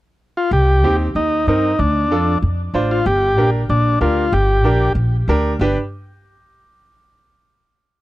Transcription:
0.37 F4
0.51 C2 G4
0.84 D#2 C4 D#4 G4
1.15 D#2 D#4
1.47 G2 C4 D#4 A#4
1.79 D2 D4
2.10 F2 D4 F4 A4
2.42 F2
2.74 A1 D4 F4 C5
2.91 F4
3.06 G1 G4
3.37 A#1 D4 G4 A#4
3.69 A#1 D4
4.01 D2 D4 F4 G4 A#4
4.32 G1 G4
4.64 A#1 D4 G4 A#4
4.95 A#1
5.28 D2 D4 G4 A#4
5.59 G1 D4 G4 B4

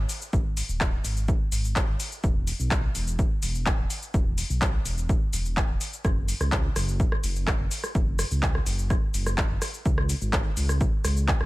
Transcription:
0.09 open hi-hat, shaker
0.22 shaker
0.33 G#1, kick, shaker
0.57 open hi-hat, shaker
0.69 D#1, shaker
0.81 kick, clap, shaker
1.05 G#1, open hi-hat, shaker
1.17 shaker
1.28 kick, shaker
1.52 G#1, open hi-hat, shaker
1.65 shaker
1.76 kick, clap, shaker
1.88 G#1
2.00 open hi-hat, shaker
2.12 shaker
2.24 E1, kick, shaker
2.47 open hi-hat, shaker
2.60 B1, shaker
2.71 kick, clap, shaker
2.95 E1, open hi-hat, shaker
3.07 shaker
3.19 kick, shaker
3.43 E1, open hi-hat, shaker
3.55 shaker
3.66 kick, clap, shaker
3.79 E1
3.90 open hi-hat, shaker
4.03 shaker
4.14 E1, kick, shaker
4.38 open hi-hat, shaker
4.50 B1, shaker
4.62 kick, clap, shaker
4.85 E1, open hi-hat, shaker
4.98 shaker
5.09 kick, shaker
5.33 E1, open hi-hat, shaker
5.46 shaker
5.57 kick, clap, shaker
5.69 E1
5.81 open hi-hat, shaker
5.93 shaker
6.05 F#1, kick, cross-stick, shaker
6.28 open hi-hat, shaker
6.41 C#2, cross-stick, shaker
6.52 kick, clap, shaker
6.76 F#1, cross-stick, open hi-hat, shaker
6.88 shaker
7.00 kick, shaker
7.12 cross-stick
7.24 F#1, open hi-hat, shaker
7.36 shaker
7.47 kick, cross-stick, clap, shaker
7.60 F#1
7.71 open hi-hat, shaker
7.84 cross-stick, shaker
7.95 F#1, kick, shaker
8.19 cross-stick, open hi-hat, shaker
8.31 C#2, shaker
8.43 kick, clap, shaker
8.55 cross-stick
8.66 F#1, open hi-hat, shaker
8.79 shaker
8.90 kick, cross-stick, shaker
9.14 F#1, open hi-hat, shaker
9.26 cross-stick, shaker
9.38 kick, clap, shaker
9.50 F#1
9.62 cross-stick, open hi-hat, shaker
9.74 shaker
9.86 C#2, kick, shaker
9.98 cross-stick
10.09 open hi-hat, shaker
10.22 G#1, shaker
10.33 kick, cross-stick, clap, shaker
10.57 C#2, open hi-hat, shaker
10.69 cross-stick, shaker
10.81 kick, shaker
11.04 C#2, cross-stick, open hi-hat, shaker
11.17 shaker
11.28 kick, clap, shaker
11.41 C#2, cross-stick

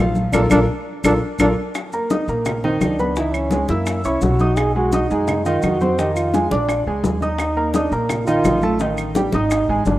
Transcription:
Already playing: A#1
0.00 F3 F4 F5
0.15 high bongo, high conga, maracas
0.33 A#1 D4 F4 A4 A#4, high bongo, high conga, claves, maracas
0.50 A#1 D4 F4 A4 A#4, high bongo, high conga, claves, maracas
1.04 A#1 D4 F4 A4 A#4, high bongo, high conga, claves, maracas
1.39 A#1 D4 F4 A4 A#4, high bongo, high conga, claves, maracas
1.75 high bongo, high conga, claves, maracas
1.92 A#3 A#4 A#5, high bongo, high conga, maracas
2.10 D#4 D#5 D#6, high bongo, high conga, maracas
2.28 A#1 A#3 A#4 A#5, high bongo, high conga, maracas
2.46 high bongo, high conga, low conga, claves, maracas
2.63 D#3 C4 D#4 D#5, high conga, low conga
2.81 C#2 D4, high bongo, low bongo, high conga, claves, maracas
2.99 B3 B4 B5, high bongo, high conga, maracas
3.16 E3 D#4 E4 E5, high bongo, high conga, maracas
3.33 C#4, high bongo, high conga, claves, maracas
3.51 G#3 G#4 G#5, high bongo, high conga, maracas
3.68 F#2 A#3 E4 E5 E6, high bongo, high conga, maracas
3.86 high bongo, high conga, claves, maracas
4.04 C2 C#4 E4 C#5 C#6, high conga, maracas
4.21 B1 F#4, high bongo, low bongo, high conga, maracas
4.39 D#4 D#5 D#6, high bongo, high conga, maracas
4.57 G#4, high bongo, high conga, claves, maracas
4.75 G#3 F#4 G#4 G#5, high bongo, high conga
4.92 D#4 D#5 D#6, high bongo, high conga, maracas
5.10 F#2 G#3 D#4 G#4 G#5, high bongo, high conga, maracas
5.27 high bongo, high conga, low conga, claves, maracas
5.45 D#3 D#4 F4 D#5, high conga, maracas
5.62 F2 F#4, high bongo, low bongo, high conga, claves, maracas
5.81 C4 C5 C6, high bongo, high conga, maracas
5.98 D#3 D#4 G4 D#5, high bongo, high conga, maracas
6.14 F4, high bongo, high conga, claves, maracas
6.34 G#3 G#4 G#5, high bongo, high conga, maracas
6.51 A#1 D4 D5 D6, high bongo, high conga, maracas
6.69 high bongo, high conga, claves, maracas
6.87 C#2 G#3 G#4 G#5, high conga
7.04 D#2, high bongo, low bongo, high conga, maracas
7.21 D#4 D#5 D#6, high bongo, high conga, maracas
7.38 high bongo, high conga, claves, maracas
7.57 A#3 A#4 A#5, high bongo, high conga
7.74 D4 D#4 D#5 D#6, high bongo, high conga, maracas
7.91 A#1 A#3 A#4 A#5, high bongo, high conga, maracas
8.09 high bongo, high conga, low conga, claves, maracas
8.26 D#3 D#4 F4 D#5, high conga, maracas
8.44 A1, high bongo, low bongo, high conga, claves, maracas
8.62 A3 A4 A5, high bongo, high conga, maracas
8.79 D#3 D#4 D#5, high bongo, high conga, maracas
8.97 high bongo, high conga, claves, maracas
9.15 G3 G4 G5, high bongo, high conga, maracas
9.32 G#1 D#4 D#5 D#6, high bongo, high conga, maracas
9.51 high bongo, high conga, claves, maracas
9.68 G#1 G#3 G#4 G#5, high conga
9.85 G1 D4, high bongo, low bongo, high conga, maracas

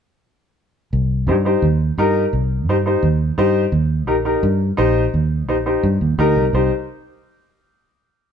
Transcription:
0.93 C2
1.27 G2 D#4 G4 C5
1.45 D#4 G4 C5
1.62 D#2
1.98 G2 D#4 G4 A#4
2.33 C2
2.67 G2 D#4 G4 C5
2.86 D#4 G4 C5
3.03 D#2
3.38 G2 D#4 G4 C5
3.72 D#2
4.07 A#1 D#4 G4 A#4
4.25 D#4 G4 A#4
4.43 G2
4.77 A#1 D#4 G4 C5
5.14 D#2
5.48 A#1 D#4 G4 C5
5.66 D#4 G4 C5
5.83 G2
6.01 D#2
6.18 D2 D#4 G4 A#4
6.36 C2
6.53 C2 D#4 G4 C5

